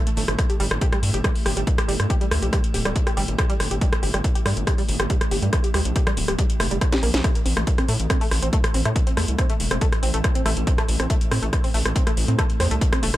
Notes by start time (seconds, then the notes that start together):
Already playing: A2 A3
0.07 A3, closed hi-hat
0.17 G1 A3, open hi-hat
0.28 G1 A3, cross-stick, closed hi-hat
0.39 kick, cross-stick, closed hi-hat
0.50 G4, closed hi-hat
0.60 G1 G3, open hi-hat
0.71 G1, cross-stick, closed hi-hat
0.81 G4, kick, closed hi-hat
0.92 G3, cross-stick, closed hi-hat
1.03 G2, open hi-hat
1.14 G1 G4, closed hi-hat
1.24 G3, kick, cross-stick, closed hi-hat
1.35 open hi-hat
1.46 G1 G4, cross-stick, open hi-hat
1.57 G1 G3, closed hi-hat
1.67 kick, closed hi-hat
1.78 G4, cross-stick, closed hi-hat
1.88 G1 G3, open hi-hat
2.00 G2, cross-stick, closed hi-hat
2.10 G4, kick, closed hi-hat
2.21 G3, closed hi-hat
2.31 D2, cross-stick, open hi-hat
2.42 A#1 G4, closed hi-hat
2.53 G3, kick, cross-stick, closed hi-hat
2.64 closed hi-hat
2.74 D1 G4, open hi-hat
2.85 D1 G3, cross-stick, closed hi-hat
2.96 kick, closed hi-hat
3.07 G4, cross-stick, closed hi-hat
3.17 G1 G3, open hi-hat
3.28 G1, closed hi-hat
3.38 G4, kick, cross-stick, closed hi-hat
3.50 G3, closed hi-hat
3.60 G1, cross-stick, open hi-hat
3.71 G1 G4, closed hi-hat
3.81 G3, kick, closed hi-hat
3.93 cross-stick, closed hi-hat
4.03 G1 G4, open hi-hat
4.14 G1 G3, cross-stick, closed hi-hat
4.24 kick, closed hi-hat
4.35 G4, closed hi-hat
4.46 G2 G3, cross-stick, open hi-hat
4.57 G1, closed hi-hat
4.67 G4, kick, cross-stick, closed hi-hat
4.78 G3, open hi-hat
4.88 G1, open hi-hat
5.00 G1 G4, cross-stick, closed hi-hat
5.10 G3, kick, closed hi-hat
5.21 cross-stick, closed hi-hat
5.31 G1 G4, open hi-hat
5.42 G2 G3, closed hi-hat
5.53 kick, cross-stick, closed hi-hat
5.64 G4, closed hi-hat
5.74 D2 G3, cross-stick, open hi-hat
5.85 A#1, closed hi-hat
5.96 G4, kick, closed hi-hat
6.07 G3, cross-stick, closed hi-hat
6.17 D1, open hi-hat
6.28 D1 G4, cross-stick, closed hi-hat
6.39 G3, kick, closed hi-hat
6.50 closed hi-hat
6.60 F1 A3, cross-stick, open hi-hat
6.71 F1 G3, closed hi-hat
6.81 kick, cross-stick, closed hi-hat
6.92 G4, snare, closed hi-hat
7.03 A#1 A#3, open hi-hat
7.14 A#1, snare, closed hi-hat
7.24 A2 A3, kick, cross-stick, closed hi-hat
7.35 closed hi-hat
7.46 A1 C4, open hi-hat
7.57 A1 A3, cross-stick, closed hi-hat
7.67 kick, closed hi-hat
7.78 C4, cross-stick, closed hi-hat
7.88 A2 A3, open hi-hat
8.00 A1, closed hi-hat
8.10 C4, kick, cross-stick, closed hi-hat
8.21 A3, open hi-hat
8.31 A1, cross-stick, open hi-hat
8.42 A1 C4, closed hi-hat
8.53 A3, kick, closed hi-hat
8.64 cross-stick, closed hi-hat
8.74 A1 C4, open hi-hat
8.85 A2 A3, cross-stick, closed hi-hat
8.96 kick, closed hi-hat
9.07 C4, closed hi-hat
9.17 E2 A3, cross-stick, open hi-hat
9.28 C2, closed hi-hat
9.38 C4, kick, cross-stick, closed hi-hat
9.50 A3, closed hi-hat
9.60 E1, open hi-hat
9.71 E1 C4, cross-stick, closed hi-hat
9.81 A3, kick, closed hi-hat
9.92 cross-stick, closed hi-hat
10.03 A1 C4, open hi-hat
10.14 A1 A3, closed hi-hat
10.24 kick, cross-stick, closed hi-hat
10.35 C4, closed hi-hat
10.46 A1 A3, cross-stick, open hi-hat
10.57 A1, closed hi-hat
10.67 C4, kick, closed hi-hat
10.78 A3, cross-stick, closed hi-hat
10.89 A1, open hi-hat
11.00 A1 C4, cross-stick, closed hi-hat
11.10 A3, kick, closed hi-hat
11.21 closed hi-hat
11.31 A2 C4, cross-stick, open hi-hat
11.42 A1 A3, closed hi-hat
11.53 kick, cross-stick, closed hi-hat
11.64 C4, open hi-hat
11.74 A1 A3, open hi-hat
11.85 A1, cross-stick, closed hi-hat
11.96 C4, kick, closed hi-hat
12.07 A3, cross-stick, closed hi-hat
12.17 A1, open hi-hat
12.28 A2 C4, closed hi-hat
12.38 A3, kick, cross-stick, closed hi-hat
12.50 closed hi-hat
12.60 E2 C4, cross-stick, open hi-hat
12.71 C2 A3, closed hi-hat
12.81 kick, closed hi-hat
12.92 C4, cross-stick, closed hi-hat
13.03 E1 A3, open hi-hat
13.14 E1, cross-stick, closed hi-hat